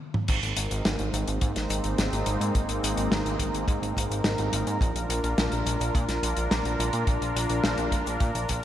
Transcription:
0.14 mid tom medium
0.28 0.39 G#1 loud
0.28 4.77 G#3 medium
0.28 4.77 A#3 medium
0.28 4.77 C4 medium
0.28 4.77 D#4 medium
0.28 8.64 A#4 medium
0.28 kick loud
0.28 closed hi-hat medium
0.28 crash loud
0.28 cabasa soft
0.42 0.53 G#1 medium
0.42 closed hi-hat medium
0.56 0.68 G#1 medium
0.56 closed hi-hat loud
0.56 cabasa medium
0.71 0.82 G#1 medium
0.71 closed hi-hat medium
0.71 cabasa medium
0.85 0.96 G#1 loud
0.85 snare loud
0.85 closed hi-hat medium
0.85 cabasa soft
0.99 1.10 G#1 medium
0.99 closed hi-hat medium
1.14 1.24 G#1 loud
1.14 closed hi-hat loud
1.14 cabasa medium
1.28 1.38 G#1 medium
1.28 closed hi-hat medium
1.28 cabasa medium
1.41 1.52 G#2 loud
1.41 kick loud
1.41 closed hi-hat medium
1.41 cabasa soft
1.56 1.67 G#1 medium
1.56 snare soft
1.56 closed hi-hat medium
1.70 1.81 G#1 medium
1.70 closed hi-hat loud
1.70 cabasa medium
1.84 1.95 G#1 medium
1.84 closed hi-hat medium
1.84 cabasa medium
1.98 2.09 G#1 loud
1.98 snare loud
1.98 closed hi-hat medium
1.98 cabasa soft
2.12 2.23 G#1 medium
2.12 closed hi-hat medium
2.26 2.37 G#1 medium
2.26 closed hi-hat loud
2.26 cabasa medium
2.41 2.51 G#2 medium
2.41 closed hi-hat medium
2.41 cabasa medium
2.55 2.66 G#1 loud
2.55 kick loud
2.55 closed hi-hat medium
2.55 cabasa soft
2.69 2.80 G#1 medium
2.69 closed hi-hat medium
2.83 2.94 G#1 medium
2.83 closed hi-hat loud
2.83 cabasa medium
2.97 3.08 G#1 medium
2.97 closed hi-hat medium
2.97 cabasa soft
3.11 3.22 G#1 loud
3.11 snare loud
3.11 closed hi-hat medium
3.11 cabasa medium
3.25 3.36 G#1 medium
3.25 closed hi-hat medium
3.39 3.50 G#1 loud
3.39 kick medium
3.39 closed hi-hat loud
3.39 cabasa medium
3.54 3.65 G#1 medium
3.54 closed hi-hat medium
3.54 cabasa medium
3.68 3.79 G#2 loud
3.68 kick loud
3.68 closed hi-hat medium
3.68 cabasa medium
3.82 3.93 G#1 medium
3.82 closed hi-hat medium
3.97 4.07 G#1 medium
3.97 kick medium
3.97 closed hi-hat loud
3.97 cabasa medium
4.10 4.21 G#1 medium
4.10 closed hi-hat medium
4.10 cabasa medium
4.24 4.35 G#1 loud
4.24 snare loud
4.24 closed hi-hat medium
4.24 cabasa soft
4.38 4.50 G#1 medium
4.38 closed hi-hat medium
4.53 4.64 G#1 medium
4.53 closed hi-hat loud
4.53 cabasa medium
4.67 4.78 G#2 medium
4.67 closed hi-hat medium
4.67 cabasa medium
4.81 4.92 A#1 loud
4.81 8.64 D4 medium
4.81 8.64 F4 medium
4.81 kick loud
4.81 closed hi-hat medium
4.81 cabasa medium
4.95 5.06 A#1 medium
4.95 closed hi-hat medium
5.09 5.20 A#1 medium
5.09 closed hi-hat loud
5.09 cabasa medium
5.24 5.34 A#1 medium
5.24 closed hi-hat medium
5.24 cabasa soft
5.38 5.49 A#1 loud
5.38 snare loud
5.38 closed hi-hat medium
5.38 cabasa soft
5.52 5.63 A#1 medium
5.52 closed hi-hat medium
5.66 5.77 A#1 medium
5.66 closed hi-hat loud
5.66 cabasa medium
5.80 5.91 A#1 medium
5.80 closed hi-hat medium
5.80 cabasa medium
5.95 6.05 A#2 loud
5.95 kick loud
5.95 closed hi-hat medium
5.95 cabasa soft
6.08 6.19 A#1 medium
6.08 snare soft
6.08 closed hi-hat medium
6.23 6.34 A#1 medium
6.23 closed hi-hat loud
6.23 cabasa medium
6.37 6.48 A#1 medium
6.37 closed hi-hat medium
6.37 cabasa medium
6.51 6.62 A#1 loud
6.51 snare loud
6.51 closed hi-hat medium
6.51 cabasa soft
6.65 6.76 A#1 medium
6.65 closed hi-hat medium
6.79 6.90 A#1 loud
6.79 closed hi-hat loud
6.79 cabasa medium
6.93 7.04 A#2 medium
6.93 closed hi-hat medium
6.93 cabasa medium
7.07 7.18 A#1 loud
7.07 kick loud
7.07 closed hi-hat medium
7.07 cabasa soft
7.22 7.33 A#1 medium
7.22 closed hi-hat medium
7.35 7.47 A#1 medium
7.35 closed hi-hat loud
7.35 cabasa medium
7.50 7.61 A#1 medium
7.50 closed hi-hat medium
7.50 cabasa soft
7.64 7.75 A#1 loud
7.64 snare loud
7.64 closed hi-hat medium
7.64 cabasa soft
7.78 7.89 A#1 medium
7.78 closed hi-hat medium
7.92 8.03 A#1 loud
7.92 kick medium
7.92 closed hi-hat medium
7.92 cabasa medium
8.06 8.17 A#1 medium
8.06 closed hi-hat medium
8.06 cabasa medium
8.20 8.32 A#2 loud
8.20 kick loud
8.20 closed hi-hat medium
8.20 cabasa soft
8.35 8.46 A#1 medium
8.35 closed hi-hat medium
8.49 8.60 A#1 loud
8.49 kick medium
8.49 closed hi-hat medium
8.49 cabasa medium

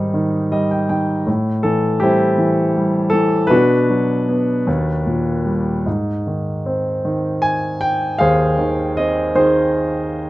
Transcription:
0.00 1.23 G#2 soft
0.00 0.12 D#3 soft
0.00 0.52 G3 soft
0.00 0.49 C4 soft
0.00 0.47 D#4 medium
0.14 0.88 D#3 soft
0.52 1.25 G3 soft
0.52 0.70 D#5 medium
0.71 0.88 G5 soft
0.89 1.26 D#3 soft
0.89 1.24 G5 medium
1.27 3.48 A2 soft
1.63 2.37 E3 soft
1.63 1.98 A4 medium
2.00 2.75 G3 soft
2.00 3.10 C4 medium
2.00 3.10 E4 medium
2.00 3.16 G4 medium
2.38 3.12 E3 soft
2.76 3.50 G3 soft
3.10 3.50 E3 soft
3.10 3.47 A4 medium
3.47 4.63 B2 medium
3.47 5.02 D4 medium
3.47 5.00 B4 medium
3.51 5.02 F#4 medium
3.90 4.65 F#3 soft
4.29 4.66 B3 soft
4.67 5.82 D#2 medium
5.06 5.84 A#2 soft
5.45 5.85 G3 soft
5.86 8.17 G#2 soft
6.27 7.03 D#3 soft
6.66 8.17 C4 soft
7.05 8.55 D#3 medium
7.42 7.82 G#5 medium
7.81 8.21 G5 medium
8.18 10.30 D#2 medium
8.18 9.31 G#4 medium
8.18 9.32 C5 medium
8.18 8.99 F5 medium
8.58 9.34 D#3 soft
8.97 10.30 C4 soft
8.97 9.37 D#5 medium
9.35 10.30 D#3 medium
9.35 10.30 D#4 soft
9.35 10.30 G#4 soft
9.35 10.18 C5 medium

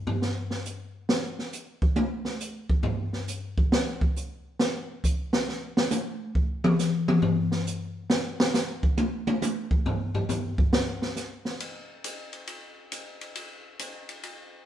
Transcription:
0.07 floor tom medium
0.22 snare soft
0.50 snare soft
0.65 hi-hat pedal medium
1.09 snare medium
1.39 snare soft
1.53 hi-hat pedal medium
1.82 kick medium
1.96 high tom loud
2.25 snare soft
2.40 hi-hat pedal soft
2.70 kick medium
2.83 floor tom medium
3.13 snare soft
3.28 hi-hat pedal medium
3.58 kick medium
3.72 snare loud
4.01 kick medium
4.16 hi-hat pedal medium
4.59 snare medium
5.04 kick medium
5.04 hi-hat pedal medium
5.33 snare medium
5.49 snare soft
5.77 snare medium
5.91 hi-hat pedal medium
5.91 high tom medium
6.35 kick medium
6.64 mid tom medium
6.79 snare soft
6.79 hi-hat pedal medium
7.08 mid tom medium
7.22 floor tom medium
7.52 snare soft
7.66 hi-hat pedal medium
8.10 snare medium
8.40 snare loud
8.54 snare medium
8.54 hi-hat pedal medium
8.83 kick medium
8.98 high tom medium
9.27 high tom medium
9.42 hi-hat pedal medium
9.42 high tom medium
9.71 kick medium
9.86 floor tom medium
10.15 floor tom medium
10.29 floor tom loud
10.29 hi-hat pedal medium
10.58 kick medium
10.73 snare loud
11.02 snare medium
11.16 snare soft
11.16 hi-hat pedal medium
11.45 snare soft
11.60 ride medium
12.04 hi-hat pedal soft
12.04 ride medium
12.33 ride soft
12.47 ride medium
12.92 hi-hat pedal soft
12.92 ride medium
13.21 ride soft
13.35 ride medium
13.79 hi-hat pedal soft
13.79 ride medium
14.09 ride soft
14.23 ride medium

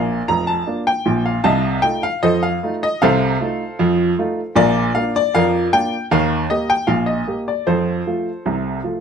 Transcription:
0.00 0.20 A#1 medium
0.00 0.20 A#2 medium
0.00 0.25 A#4 medium
0.00 0.25 D5 medium
0.00 0.20 F5 loud
0.28 0.59 F1 medium
0.28 0.60 F2 medium
0.28 0.47 A#5 loud
0.47 0.78 A5 loud
0.67 0.89 A#3 medium
0.67 0.88 D4 medium
0.67 0.89 F4 medium
0.87 1.24 G5 loud
1.06 1.37 A#1 medium
1.06 1.37 A#2 medium
1.26 1.44 F5 medium
1.44 1.78 C2 medium
1.44 1.77 C3 medium
1.44 1.81 D#5 medium
1.44 1.81 F5 medium
1.44 1.81 A5 loud
1.82 2.04 A3 medium
1.82 2.05 D#4 medium
1.82 2.05 F4 medium
1.82 2.02 G5 loud
2.03 2.22 F5 loud
2.23 2.56 F2 medium
2.23 2.56 F3 medium
2.23 2.41 A4 medium
2.23 2.41 C5 medium
2.23 2.42 D#5 loud
2.43 2.73 F5 loud
2.63 2.84 A3 medium
2.63 2.85 D#4 medium
2.63 2.85 F4 medium
2.83 3.01 D#5 loud
3.02 3.35 C2 medium
3.02 3.35 C3 loud
3.02 4.53 A4 loud
3.02 4.53 C5 medium
3.02 4.52 F5 loud
3.41 3.62 A3 medium
3.41 3.62 D#4 medium
3.41 3.62 F4 medium
3.79 4.12 F2 loud
3.79 4.12 F3 loud
4.18 4.39 A3 medium
4.18 4.40 D#4 medium
4.18 4.40 F4 medium
4.56 4.89 A#1 loud
4.56 4.89 A#2 loud
4.56 4.93 F4 medium
4.56 4.92 A#4 medium
4.56 4.93 D5 loud
4.95 5.17 A#3 medium
4.95 5.17 D4 medium
4.95 5.17 F4 medium
4.95 5.14 F5 loud
5.16 5.34 D5 loud
5.35 5.67 F2 loud
5.35 5.67 F3 loud
5.35 5.71 A#4 medium
5.35 5.71 D5 medium
5.35 5.65 F5 loud
5.73 5.94 A#3 medium
5.73 5.95 D4 medium
5.73 5.95 F4 medium
5.73 6.04 G5 loud
6.11 6.44 D#2 loud
6.11 6.44 D#3 loud
6.11 6.42 F5 loud
6.50 6.72 A#3 medium
6.50 6.72 G4 medium
6.50 6.69 D#5 loud
6.70 6.89 G5 loud
6.87 7.21 A#1 medium
6.87 7.21 A#2 medium
6.87 7.07 F5 loud
7.06 7.38 D#5 medium
7.27 7.49 A#3 medium
7.27 7.49 G4 medium
7.48 7.67 D5 medium
7.67 8.00 F2 medium
7.67 8.00 F3 medium
7.67 8.06 F4 medium
7.67 9.00 A4 medium
7.67 9.00 C5 medium
8.07 8.28 F3 soft
8.07 8.29 A3 soft
8.07 8.28 F4 medium
8.46 8.78 C2 medium
8.46 8.79 C3 medium
8.84 9.00 F3 medium
8.84 9.00 A3 soft
8.84 9.00 F4 soft

